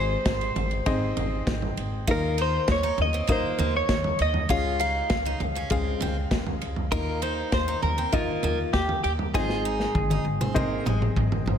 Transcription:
Already playing: upright bass G#1, grand piano G#2 C4 D#4 G#4 C5 D#5, clean electric guitar C5
0.25 upright bass G#1, kick, snare, ride
0.41 ride
0.56 upright bass G#1, floor tom, ride
0.71 ride
0.86 upright bass G#1, grand piano C4 D#4 G#4 C5 D#5, kick, ride
1.17 upright bass G#1, floor tom, ride
1.47 upright bass G#1, kick, snare, ride
1.62 floor tom
1.77 upright bass G#1, ride
2.07 upright bass D#2, grand piano D#3 A#3 D#4 F4 A#4 D#5, steel-string acoustic guitar F4, clean electric guitar A#4, kick, ride
2.38 steel-string acoustic guitar D#4, clean electric guitar C5, ride
2.68 upright bass D#2, clean electric guitar C#5, kick, snare, ride
2.83 steel-string acoustic guitar D#4, ride
2.98 upright bass D#2, clean electric guitar D#5, floor tom, ride
3.13 steel-string acoustic guitar C4, ride
3.27 upright bass D#2, steel-string acoustic guitar A#3, grand piano A#3 D#4 F4 A#4 D#5, kick, ride
3.32 clean electric guitar C5
3.58 upright bass D#2, steel-string acoustic guitar A#3, floor tom, ride
3.76 clean electric guitar C#5
3.89 upright bass D#2, kick, snare, ride
4.04 floor tom
4.19 upright bass D#2, clean electric guitar D#5, ride
4.34 floor tom
4.49 upright bass C#2, grand piano C#3 G#3 C#4 F4 G#4 C#5, steel-string acoustic guitar F4, clean electric guitar F5, kick, ride
4.79 steel-string acoustic guitar D#4, clean electric guitar F5, ride
5.10 upright bass C#2, kick, snare, ride
5.25 steel-string acoustic guitar D#4, ride
5.40 upright bass C#2, floor tom, ride
5.55 steel-string acoustic guitar C#4, ride
5.70 upright bass C#2, grand piano C#3 G#3 F4 G#4 F5, steel-string acoustic guitar C4, kick, ride
6.01 upright bass C#2, steel-string acoustic guitar C4, floor tom, ride
6.31 upright bass C#2, kick, snare, ride
6.47 floor tom
6.61 upright bass C#2, ride
6.76 floor tom
6.91 upright bass D#2, grand piano D#3 A#3 D#4 F4 A#4 D#5, steel-string acoustic guitar F4, clean electric guitar A#4, kick, ride
7.22 steel-string acoustic guitar D#4, clean electric guitar C5, ride
7.52 upright bass D#2, clean electric guitar C5, kick, snare, ride
7.68 steel-string acoustic guitar D#4
7.82 upright bass D#2, clean electric guitar A#4, floor tom, ride
7.98 steel-string acoustic guitar C4, ride
8.12 upright bass D#2, grand piano A#3 D#4 F4 A#4 D#5, steel-string acoustic guitar A#3, clean electric guitar F4, kick, ride
8.43 upright bass D#2, steel-string acoustic guitar A#3, floor tom, ride
8.73 upright bass D#2, clean electric guitar G4, kick, snare, ride
8.89 floor tom
9.04 upright bass D#2, clean electric guitar G4, ride
9.19 floor tom
9.34 upright bass G#1, grand piano G#2 C4 D#4 G#4 C5 D#5, steel-string acoustic guitar F4, clean electric guitar G#4, kick, snare
9.49 snare
9.65 steel-string acoustic guitar D#4
9.80 snare
9.95 upright bass G#1, kick, high tom
10.10 steel-string acoustic guitar D#4, high tom
10.25 upright bass G#1
10.41 steel-string acoustic guitar C4, mid tom
10.54 upright bass G#1, steel-string acoustic guitar A#3, grand piano C4 D#4 G#4 C5 D#5, kick, mid tom
10.85 upright bass G#1, steel-string acoustic guitar G#3, mid tom
11.02 mid tom
11.16 upright bass G#1, kick, mid tom
11.32 floor tom
11.46 upright bass G#1, floor tom

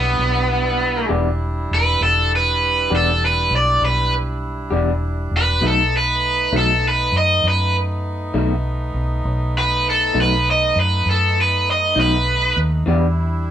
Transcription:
Already playing: fingered electric bass B1, horn section G3 D4 E4, overdriven electric guitar B3
0.19 fingered electric bass B1
1.09 fingered electric bass E1, clean electric guitar E3 B3 D4 G4
1.71 fingered electric bass E1, overdriven electric guitar B4
2.01 fingered electric bass E1, overdriven electric guitar A4
2.36 overdriven electric guitar B4
2.90 fingered electric bass E1, clean electric guitar E3 B3 D4 G4
2.95 overdriven electric guitar A4
3.25 overdriven electric guitar B4
3.51 fingered electric bass B1
3.56 overdriven electric guitar D5
3.82 fingered electric bass B1, overdriven electric guitar B4
4.71 fingered electric bass E1, clean electric guitar E3 B3 D4 G4
5.31 fingered electric bass E1
5.37 overdriven electric guitar B4
5.61 fingered electric bass B1, clean electric guitar B2 F#3 A3 D#4, horn section A3 B3 D#4
5.67 overdriven electric guitar A4
5.97 overdriven electric guitar B4
6.53 fingered electric bass B1, clean electric guitar B2 F#3 A3 D#4
6.58 overdriven electric guitar A4
6.88 overdriven electric guitar B4
7.12 fingered electric bass F#2
7.18 overdriven electric guitar D#5
7.44 fingered electric bass F#2
7.48 overdriven electric guitar B4
8.34 fingered electric bass B1, clean electric guitar B2 F#3 A3 D#4
8.94 fingered electric bass B1
9.25 fingered electric bass B1
9.58 overdriven electric guitar B4
9.90 overdriven electric guitar A4
10.14 fingered electric bass B1, clean electric guitar B2 F#3 A3 D#4
10.22 overdriven electric guitar B4
10.51 overdriven electric guitar D#5
10.76 fingered electric bass F#2
10.80 overdriven electric guitar B4
11.06 fingered electric bass F#2
11.10 overdriven electric guitar A4
11.41 overdriven electric guitar B4
11.71 overdriven electric guitar D#5
11.96 fingered electric bass B1, clean electric guitar B2 F#3 A3 D#4
12.00 overdriven electric guitar B4
12.57 fingered electric bass D#2
12.86 fingered electric bass E2, clean electric guitar E3 B3 D4 G4, horn section G3 D4 E4

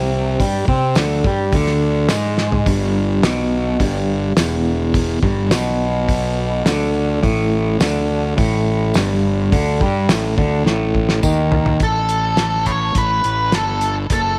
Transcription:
Already playing: fingered electric bass C2, clean electric guitar C3
0.39 fingered electric bass G2, clean electric guitar G3, kick, open hi-hat
0.68 fingered electric bass C3, clean electric guitar C4, kick
0.95 fingered electric bass D2, clean electric guitar D3, snare, open hi-hat, tambourine
1.24 fingered electric bass G2, clean electric guitar G3, kick
1.52 fingered electric bass D2, clean electric guitar D3, kick, open hi-hat
1.67 snare
2.09 fingered electric bass G#2, clean electric guitar G#3, snare, open hi-hat, tambourine
2.38 snare
2.52 floor tom
2.66 fingered electric bass G1, clean electric guitar G2, kick, open hi-hat
3.22 fingered electric bass B1, clean electric guitar B2, snare, open hi-hat, tambourine
3.79 fingered electric bass G1, clean electric guitar G2, kick, open hi-hat
4.37 fingered electric bass E1, clean electric guitar E2, snare, open hi-hat, tambourine
4.94 kick, open hi-hat
5.22 fingered electric bass G1, clean electric guitar G2, kick
5.50 fingered electric bass B1, clean electric guitar B2, snare, open hi-hat, tambourine
6.09 kick, open hi-hat
6.65 fingered electric bass D2, clean electric guitar D3, snare, open hi-hat, tambourine
7.23 fingered electric bass A1, clean electric guitar A2, kick, open hi-hat
7.80 fingered electric bass D2, clean electric guitar D3, snare, open hi-hat, tambourine
8.37 fingered electric bass A1, clean electric guitar A2, kick, open hi-hat
8.94 fingered electric bass G1, clean electric guitar G2, snare, open hi-hat, tambourine
9.52 fingered electric bass D2, clean electric guitar D3, kick, open hi-hat
9.80 fingered electric bass G2, clean electric guitar G3, kick
10.09 fingered electric bass A1, clean electric guitar A2, snare, open hi-hat, tambourine
10.37 fingered electric bass D2, clean electric guitar D3, kick
10.65 fingered electric bass A1, clean electric guitar A2, snare
10.95 kick
11.09 snare
11.23 fingered electric bass D#2, clean electric guitar D#3, kick, tambourine
11.52 floor tom
11.66 floor tom
11.80 fingered electric bass A1, lead electric guitar A4, kick, closed hi-hat
12.09 closed hi-hat
12.37 snare, closed hi-hat
12.66 lead electric guitar C#5, kick, closed hi-hat
12.94 fingered electric bass A1, lead electric guitar B4, kick, closed hi-hat
13.24 fingered electric bass A1, closed hi-hat
13.52 fingered electric bass G1, lead electric guitar A4, snare, closed hi-hat
13.81 closed hi-hat
14.10 fingered electric bass F#1, lead electric guitar A4, kick, closed hi-hat

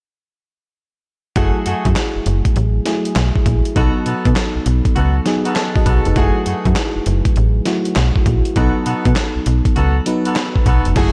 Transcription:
1.35 fm bass F#1, fm electric piano F#3 A3 E4 G#4, horn section A3 E4 F#4 G#4, kick, closed hi-hat
1.66 fm bass F#2, horn section A3 E4 F#4 G#4, closed hi-hat
1.85 fm bass F#2, kick, closed hi-hat
1.96 snare, clap, closed hi-hat
2.16 fm bass F#1
2.26 fm bass F#1, closed hi-hat
2.45 kick, closed hi-hat
2.56 fm bass A1, closed hi-hat
2.86 fm electric piano F#3 A3 E4 G#4, snare, closed hi-hat
3.05 closed hi-hat
3.16 fm bass B1, snare, clap, closed hi-hat
3.36 kick
3.46 fm bass A#1, kick, closed hi-hat
3.65 closed hi-hat
3.76 fm bass B1, fm electric piano F#3 B3 D#4 A4, horn section B3 D#4 F#4 A4, kick, closed hi-hat
4.05 fm bass B2, horn section B3 D#4 F#4 A4, closed hi-hat
4.25 fm bass B2, kick, closed hi-hat
4.36 snare, clap, closed hi-hat
4.56 fm bass B1
4.66 fm bass B1, closed hi-hat
4.85 kick, closed hi-hat
4.96 fm bass C#2, horn section B3 D#4 F#4 A4, closed hi-hat
5.26 fm electric piano F#3 B3 D#4 G#4, snare, closed hi-hat
5.45 horn section B3 D#4 F#4 A4, closed hi-hat
5.56 fm electric piano A4 F#5 A5, snare, clap, closed hi-hat
5.76 fm electric piano F#4 D#5, kick
5.86 fm bass B1, horn section B3 D#4 F#4 A4, fm electric piano F#5, kick, closed hi-hat
6.05 fm bass F1, fm electric piano D#4 B4, closed hi-hat
6.16 fm bass F#1, fm electric piano F#3 A3 E4 G#4, horn section A3 E4 F#4 G#4, kick, closed hi-hat
6.46 fm bass F#2, horn section A3 E4 F#4 G#4, closed hi-hat
6.65 fm bass F#2, kick, closed hi-hat
6.76 snare, clap, closed hi-hat
6.96 fm bass F#1
7.06 fm bass F#1, closed hi-hat
7.25 kick, closed hi-hat
7.36 fm bass A1, closed hi-hat
7.66 fm electric piano F#3 A3 E4 F#4, snare, closed hi-hat
7.85 closed hi-hat
7.96 fm bass B1, snare, clap, closed hi-hat
8.16 kick
8.26 fm bass A#1, kick, closed hi-hat
8.45 closed hi-hat
8.56 fm bass B1, fm electric piano F#3 B3 D#4 A4, horn section B3 D#4 F#4 A4, kick, closed hi-hat
8.85 fm bass B2, horn section B3 D#4 F#4 A4, closed hi-hat
9.05 fm bass B2, kick, closed hi-hat
9.16 snare, clap, closed hi-hat
9.36 fm bass B1
9.46 fm bass B1, closed hi-hat
9.65 kick, closed hi-hat
9.75 fm bass C#2, horn section B3 D#4 F#4 A4, closed hi-hat
10.06 fm electric piano F#3 B3 D#4 B4, closed hi-hat
10.25 horn section B3 D#4 F#4 A4, closed hi-hat
10.36 snare, clap, closed hi-hat
10.56 kick
10.66 fm bass B1, horn section B3 D#4 F#4 A4, kick, closed hi-hat
10.85 fm bass F1, closed hi-hat
10.96 fm bass F#1, fm electric piano F#3 A3 E4 G#4, horn section A3 E4 F#4 G#4, kick, closed hi-hat, crash

